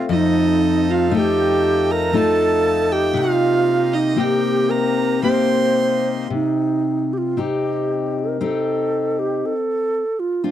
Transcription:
Already playing: steel-string acoustic guitar A3 C4 F4
0.09 steel-string acoustic guitar F2, accordion F3 D#4 A4, flute F4, fiddle D#5
0.15 flute D#4
0.90 flute F4, fiddle F5
1.11 steel-string acoustic guitar A3 D#4 F4, flute A4
1.16 flute G4, fiddle G5
1.91 flute A#4, fiddle A#5
2.13 steel-string acoustic guitar A3 D#4 F4, flute A4, fiddle A5
2.92 flute G4, fiddle G5
3.13 steel-string acoustic guitar C3, accordion C3 A#3, flute F4, fiddle F5
3.93 flute D#4, fiddle D#5
4.16 steel-string acoustic guitar A#3 C4 G4, flute G4, fiddle G5
4.70 flute A#4, fiddle A#5
5.23 steel-string acoustic guitar A#3 C4 G4, flute C5, fiddle C6
6.30 steel-string acoustic guitar C3, flute D#4
7.13 flute G4
7.18 flute F4
7.37 steel-string acoustic guitar C4 D#4 G4, flute G4
8.19 flute A#4
8.41 steel-string acoustic guitar C4 D#4 G4, flute A4
9.19 flute G4
9.46 flute A4
10.20 flute F4
10.44 steel-string acoustic guitar C4 F4, flute D4

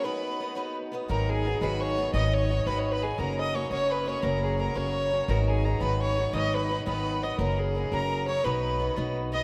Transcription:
0.03 steel-string acoustic guitar B3 D#4 F#4 B4, fiddle B4, tin whistle B5
0.40 steel-string acoustic guitar B3 D#4 F#4 B4
0.55 steel-string acoustic guitar B3 D#4 F#4 B4
0.92 steel-string acoustic guitar B3 D#4 F#4 B4
1.08 upright bass G#1, steel-string acoustic guitar G#2 D#3 F#3 B3 D#4 F#4, fiddle A#4, tin whistle A#5
1.29 fiddle G#4, tin whistle G#5
1.45 steel-string acoustic guitar F#3 B3 D#4 F#4
1.61 upright bass G#1, steel-string acoustic guitar G#2 D#3 F#3 B3 D#4 F#4, fiddle B4, tin whistle B5
1.80 fiddle C#5, tin whistle C#6
1.97 steel-string acoustic guitar F#3 B3 D#4 F#4
2.14 upright bass G#1, steel-string acoustic guitar G#2 D#3 F#3 B3 D#4 F#4, fiddle D#5, tin whistle D#6
2.33 fiddle C#5, tin whistle C#6
2.49 steel-string acoustic guitar F#3 B3 D#4 F#4
2.66 upright bass G#1, steel-string acoustic guitar G#2 D#3 F#3 B3 D#4 F#4, fiddle B4, tin whistle B5
2.79 fiddle C#5
2.91 fiddle B4, tin whistle B5
3.01 steel-string acoustic guitar F#3 B3 D#4 F#4, fiddle G#4, tin whistle G#5
3.18 upright bass F#1, steel-string acoustic guitar F#3 A#3 C#4 F#4, fiddle A#4, tin whistle A#5
3.39 fiddle D#5, tin whistle D#6
3.53 steel-string acoustic guitar F#3 A#3 C#4 F#4, fiddle C#5, tin whistle C#6
3.71 upright bass F#1, steel-string acoustic guitar F#3 A#3 C#4 F#4, fiddle C#5, tin whistle C#6
3.90 fiddle B4, tin whistle B5
4.06 steel-string acoustic guitar F#3 A#3 C#4 F#4, fiddle C#5, tin whistle C#6
4.22 upright bass F#1, steel-string acoustic guitar F#3 A#3 C#4 F#4, fiddle A#4, tin whistle A#5
4.44 fiddle G#4
4.57 steel-string acoustic guitar F#3 A#3 C#4 F#4, fiddle A#4, tin whistle A#5
4.74 upright bass F#1, steel-string acoustic guitar F#3 A#3 C#4 F#4, fiddle C#5, tin whistle C#6
5.10 steel-string acoustic guitar F#3 A#3 C#4 F#4
5.28 upright bass G#1, steel-string acoustic guitar G#2 D#3 F#3 B3 D#4 F#4, fiddle A#4, tin whistle A#5
5.48 fiddle G#4, tin whistle G#5
5.64 steel-string acoustic guitar F#3 B3 D#4 F#4, tin whistle A#5
5.80 upright bass G#1, steel-string acoustic guitar G#2 D#3 F#3 B3 D#4 F#4, fiddle B4, tin whistle B5
6.01 fiddle C#5, tin whistle C#6
6.17 steel-string acoustic guitar F#3 B3 D#4 F#4
6.33 upright bass G#1, steel-string acoustic guitar G#2 D#3 F#3 B3 D#4 F#4, fiddle D#5, tin whistle D#6
6.54 fiddle B4, tin whistle B5
6.69 steel-string acoustic guitar F#3 B3 D#4 F#4
6.86 upright bass G#1, steel-string acoustic guitar G#2 D#3 F#3 B3 D#4 F#4, fiddle B4, tin whistle B5
7.22 steel-string acoustic guitar F#3 B3 D#4 F#4, fiddle D#5, tin whistle D#6
7.39 upright bass F#1, steel-string acoustic guitar F#3 A#3 C#4 F#4, fiddle A#4, tin whistle A#5
7.59 fiddle G#4
7.75 steel-string acoustic guitar F#3 A#3 C#4 F#4
7.92 upright bass F#1, steel-string acoustic guitar F#3 A#3 C#4 F#4, fiddle A#4, tin whistle A#5
8.27 steel-string acoustic guitar F#3 A#3 C#4 F#4, fiddle C#5, tin whistle C#6
8.44 upright bass B1, steel-string acoustic guitar B3 D#4 F#4 B4, fiddle B4, tin whistle B5
8.80 steel-string acoustic guitar B3 D#4 F#4 B4
8.96 upright bass B1, steel-string acoustic guitar B3 D#4 F#4 B4
9.32 steel-string acoustic guitar B3 D#4 F#4 B4, fiddle D#5, tin whistle D#6

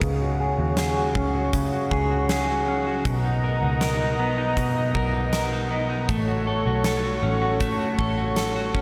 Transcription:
Already playing: analog synth pad G#4
0.01 picked electric bass C#2, clean electric guitar C#3, analog synth pad C#5 F#5 C#6, kick, closed hi-hat
0.22 clean electric guitar F#4
0.40 clean electric guitar G#4
0.59 picked electric bass D#2, clean electric guitar F#4
0.77 clean electric guitar G#4, snare, closed hi-hat
0.97 clean electric guitar F#4
1.15 picked electric bass C#2, clean electric guitar C#4, kick
1.35 clean electric guitar F#4
1.53 clean electric guitar C#3, kick, closed hi-hat
1.72 clean electric guitar F#4
1.91 picked electric bass C#2, clean electric guitar G#4, kick
2.10 clean electric guitar F#4
2.29 clean electric guitar G#4, snare, closed hi-hat
2.48 clean electric guitar F#4
2.68 clean electric guitar C#4
2.87 clean electric guitar F#4
3.04 picked electric bass B1, clean electric guitar B2, analog synth pad D#5 A#5, kick, closed hi-hat
3.25 clean electric guitar D#4
3.44 clean electric guitar A#4
3.62 picked electric bass C#2, clean electric guitar D#4
3.81 clean electric guitar A#4, snare, closed hi-hat
4.00 clean electric guitar D#4
4.19 picked electric bass B1, clean electric guitar B3
4.38 clean electric guitar D#4
4.57 clean electric guitar B2, kick, closed hi-hat
4.76 clean electric guitar D#4
4.95 picked electric bass B1, clean electric guitar A#4, kick
5.14 clean electric guitar D#4
5.33 clean electric guitar A#4, snare, closed hi-hat
5.52 clean electric guitar D#4
5.71 clean electric guitar B3
5.90 clean electric guitar D#4
6.09 picked electric bass A1, clean electric guitar A3, analog synth pad A4 C#5 F#5 C#6, kick, closed hi-hat
6.28 clean electric guitar F#4
6.47 clean electric guitar A4
6.66 picked electric bass B1, clean electric guitar F#4
6.84 clean electric guitar A4, snare, closed hi-hat
7.03 clean electric guitar F#4
7.23 picked electric bass A1, clean electric guitar C#4
7.42 clean electric guitar F#4
7.60 clean electric guitar A3, kick, closed hi-hat
7.79 clean electric guitar F#4
7.99 picked electric bass A1, clean electric guitar A4, kick
8.18 clean electric guitar F#4
8.36 clean electric guitar A4, snare, closed hi-hat
8.56 clean electric guitar F#4
8.74 clean electric guitar C#4, kick

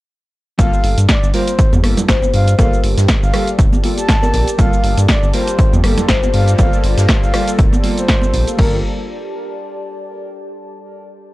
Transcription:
0.58 analog synth bass G1, synth stab G3 A#3 F4 A4, ambient pad G4, soft synth lead F5, kick, closed hi-hat, shaker
0.73 closed hi-hat, shaker
0.84 analog synth bass G1, closed hi-hat, open hi-hat
0.98 analog synth bass G2, closed hi-hat, shaker
1.08 soft synth lead D5, ambient pad D5, kick, snare, closed hi-hat, shaker
1.23 analog synth bass G1, shaker
1.33 synth stab G3 A#3 F4 A#4, soft synth lead C5, closed hi-hat, open hi-hat
1.48 closed hi-hat, shaker
1.59 kick, closed hi-hat, shaker
1.73 analog synth bass F2, ambient pad A5, high conga, shaker
1.83 analog synth bass G1, synth stab G3 A#3 F4 A4, cross-stick, closed hi-hat, open hi-hat
1.97 closed hi-hat, low conga, shaker
2.08 analog synth bass G1, kalimba C5, kick, snare, closed hi-hat, shaker
2.22 kalimba C5, high conga, shaker
2.34 analog synth bass G2, soft synth lead F5, closed hi-hat, open hi-hat
2.48 closed hi-hat, shaker
2.58 analog synth bass G1, synth stab G3 A#3 F4 A4, kalimba A#4, soft synth lead F5, kick, closed hi-hat, shaker
2.73 closed hi-hat, shaker
2.83 analog synth bass G1, closed hi-hat, open hi-hat
2.97 analog synth bass G2, snare, closed hi-hat, shaker
3.08 kick, cross-stick, snare, closed hi-hat, shaker
3.22 analog synth bass G1, soft synth lead F5, shaker
3.33 synth stab G3 A#3 F4 A4, cross-stick, closed hi-hat, open hi-hat
3.48 closed hi-hat, shaker
3.59 analog synth bass F1, kick, closed hi-hat, shaker
3.73 high conga, shaker
3.83 synth stab G3 A#3 F4 A4, closed hi-hat, open hi-hat
3.98 soft synth lead A5, closed hi-hat, shaker
4.08 kick, snare, closed hi-hat, shaker
4.23 kalimba A#4, high conga, shaker
4.34 analog synth bass A#1, kalimba A#4, closed hi-hat, open hi-hat
4.48 closed hi-hat, shaker
4.57 analog synth bass G1, synth stab G3 A#3 F4 A4, analog synth pad G3 A#3 F4 A4, soft synth lead F5, kick, closed hi-hat, shaker
4.73 closed hi-hat, shaker
4.84 analog synth bass G1, closed hi-hat, open hi-hat
4.97 analog synth bass G2, closed hi-hat, shaker
5.08 soft synth lead D5, kick, snare, closed hi-hat, shaker
5.23 analog synth bass G1, shaker
5.33 synth stab G3 A#3 F4 A#4, soft synth lead C5, closed hi-hat, open hi-hat
5.48 closed hi-hat, shaker
5.59 kick, closed hi-hat, shaker
5.72 analog synth bass F2, high conga, shaker
5.82 analog synth bass G1, synth stab G3 A#3 F4 A4, cross-stick, closed hi-hat, open hi-hat
5.97 closed hi-hat, low conga, shaker
6.08 analog synth bass G1, kalimba C5, kick, snare, closed hi-hat, shaker
6.23 kalimba C5, high conga, shaker
6.34 analog synth bass G2, soft synth lead F5, closed hi-hat, open hi-hat
6.48 closed hi-hat, shaker
6.57 analog synth bass G1, synth stab G3 A#3 F4 A4, kalimba D5, soft synth lead F5, kick, closed hi-hat, shaker
6.72 closed hi-hat, shaker
6.84 analog synth bass G1, closed hi-hat, open hi-hat
6.98 analog synth bass G2, snare, closed hi-hat, shaker
7.09 kick, cross-stick, snare, closed hi-hat, shaker
7.23 analog synth bass G1, soft synth lead F5, shaker
7.33 synth stab G3 A#3 F4 A4, kalimba D5, cross-stick, closed hi-hat, open hi-hat
7.48 closed hi-hat, shaker
7.59 analog synth bass F1, kick, closed hi-hat, shaker
7.73 high conga, shaker
7.82 synth stab G3 A#3 F4 A4, closed hi-hat, open hi-hat
7.98 soft synth lead C5, closed hi-hat, shaker
8.08 kick, snare, closed hi-hat, shaker
8.22 high conga, shaker
8.34 analog synth bass A#1, closed hi-hat, open hi-hat
8.48 closed hi-hat, shaker
8.57 analog synth bass G1, synth stab G3 A#3 F4 A4, analog synth pad G3 A#3 F4 A4, ambient pad G4, soft synth lead A#4, kick, crash
8.67 ambient pad D5
8.75 ambient pad A5

